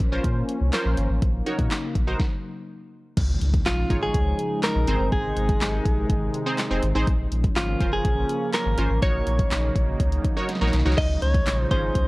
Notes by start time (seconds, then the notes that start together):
Already playing: F3 A#3 C#4
0.00 A#1, kick, closed hi-hat
0.12 C#4 F4 A#4 C5
0.24 A#2, kick, closed hi-hat
0.49 closed hi-hat
0.61 C2
0.73 C#4 F4 A#4 C5, snare, clap, closed hi-hat
0.85 A#1
0.97 G#1, closed hi-hat
1.10 A1
1.22 A#1 C#3 F#3 A#3 D#4, kick, closed hi-hat
1.46 D#4 F#4 A#4 C#5, closed hi-hat
1.59 A#2, kick, closed hi-hat
1.71 snare, clap, closed hi-hat
1.95 A#1, kick, closed hi-hat
2.07 D#4 F#4 A#4 C5
2.19 kick, snare
3.17 C#2 C#3 F3 G#3 D#4, kick, closed hi-hat, crash, impact
3.41 C#2, closed hi-hat
3.54 kick, closed hi-hat
3.66 A#1 F4, snare, clap, closed hi-hat
3.90 G#1 D#4 F4 G#4 C#5, kick, closed hi-hat
4.03 G#4
4.14 C#2, kick, closed hi-hat
4.39 closed hi-hat
4.63 A#4, snare, clap, closed hi-hat
4.76 A#1
4.88 G#1 C3 D#3 C4 D#4 G#4 C5, closed hi-hat
5.00 G1
5.12 G#1 G#4, kick, closed hi-hat
5.36 G#1, closed hi-hat
5.49 kick, closed hi-hat
5.61 G#1, snare, clap, closed hi-hat
5.85 A#1, kick, closed hi-hat
6.10 G#1, kick, closed hi-hat
6.34 closed hi-hat
6.46 C4 D#4 G#4 C5
6.58 snare, clap, closed hi-hat
6.71 F1 C4 D#4 G#4 C5
6.83 G#1, closed hi-hat
6.95 A1 C4 D#4 G#4 C5
7.07 A#1 C#3 F3 A#3 C#4, kick, closed hi-hat
7.32 A#1, closed hi-hat
7.44 kick, closed hi-hat
7.56 G#1 F4, snare, clap, closed hi-hat
7.80 F1 C#4 F4 A#4 C5, kick, closed hi-hat
7.93 G#4
8.05 A#1, kick, closed hi-hat
8.29 closed hi-hat
8.53 A#4, snare, clap, closed hi-hat
8.66 G#1
8.78 G#1 C#4 F4 A#4 C5, closed hi-hat
8.90 A1
9.02 A#1 C#3 F#3 D#4 F#4 A#4 C#5, kick, closed hi-hat
9.27 A#1, closed hi-hat
9.39 kick, closed hi-hat
9.51 A#1, snare, clap, closed hi-hat
9.76 A#1, kick, closed hi-hat
10.00 C#2, kick, closed hi-hat
10.12 closed hi-hat
10.24 kick, closed hi-hat
10.36 D#4 F#4 A#4 C#5
10.49 snare, closed hi-hat
10.55 snare
10.61 A#1 D#4 F#4 A#4 C#5, snare
10.67 snare
10.73 B1, snare, closed hi-hat
10.79 snare
10.85 C2 D#4 F#4 A#4 C#5, snare
10.92 snare
10.97 C#2 C#3 F3 G#3 D#4 D#5, kick, crash
11.22 C#2 C#5, closed hi-hat
11.34 kick, closed hi-hat
11.46 A#1, snare, clap, closed hi-hat
11.59 C5
11.71 G#1 C#4 D#4 F4 G#4 C5, kick, closed hi-hat
11.95 C#2, kick, closed hi-hat